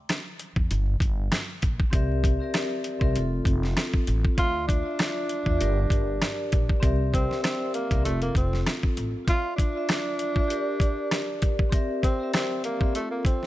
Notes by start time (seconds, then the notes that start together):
0.09 cross-stick, snare, closed hi-hat
0.39 closed hi-hat
0.56 E2, kick
0.71 G1, closed hi-hat
1.00 G1, kick, closed hi-hat
1.32 cross-stick, snare, closed hi-hat
1.62 A#1, kick, closed hi-hat
1.80 kick
1.90 C2 C4 G4 A#4 D5, kick, closed hi-hat
1.95 E5
2.24 kick, closed hi-hat
2.39 C4 G4 A#4 D5
2.44 E5
2.54 cross-stick, snare, closed hi-hat
2.84 closed hi-hat
2.99 C2 C4 G4 A#4 D5, kick
3.04 E5
3.13 F1 C4 F4, closed hi-hat
3.18 A4
3.45 F1, kick, closed hi-hat
3.63 snare
3.77 cross-stick, snare, closed hi-hat
3.94 kick
4.07 A1, closed hi-hat
4.25 kick
4.35 D2 F4 D5, kick, closed hi-hat
4.39 F4 E5
4.68 D4, kick, closed hi-hat
4.83 F4 D5
4.88 E5
4.99 cross-stick, snare, closed hi-hat
5.29 closed hi-hat
5.45 E2 F4 D5, kick
5.49 E5
5.58 G1 G4 A#4, closed hi-hat
5.63 D5
5.90 G1, kick, closed hi-hat
6.22 cross-stick, snare, closed hi-hat
6.52 A#1, kick, closed hi-hat
6.69 kick
6.80 C2 C4 G4 A#4 D5, kick, closed hi-hat
6.84 E5
7.14 C4, kick, closed hi-hat
7.29 C4 G4 A#4 D5, snare
7.34 E5
7.43 C4, cross-stick, snare, closed hi-hat
7.74 A#3, closed hi-hat
7.89 C2 C4 G4 A#4 D5, kick, closed hi-hat
7.94 E5
8.03 F1 A3 C4 F4, closed hi-hat
8.08 A4
8.22 A#3, closed hi-hat
8.35 F1 C4, kick, closed hi-hat
8.53 snare
8.66 cross-stick, snare, closed hi-hat
8.83 kick
8.97 A1, closed hi-hat
9.25 F4 D5, kick, closed hi-hat
9.29 F4 E5
9.56 D4, kick, closed hi-hat
9.73 F4 D5
9.77 E5
9.89 cross-stick, snare, closed hi-hat
10.19 closed hi-hat
10.35 F4 D5, kick
10.39 E5
10.48 G4 A#4, closed hi-hat
10.52 D5
10.80 kick, closed hi-hat
11.11 cross-stick, snare, closed hi-hat
11.42 kick, closed hi-hat
11.59 kick
11.70 C4 G4 A#4 D5, kick, closed hi-hat
11.74 E5
12.03 C4, kick, closed hi-hat
12.19 C4 G4 A#4 D5
12.23 E5
12.34 C4, cross-stick, snare, closed hi-hat
12.64 A#3, closed hi-hat
12.79 C4 G4 A#4 D5, kick
12.83 E5
12.93 A3 C4 F4, closed hi-hat
12.97 A4
13.11 A#3
13.25 C4, kick, closed hi-hat
13.43 snare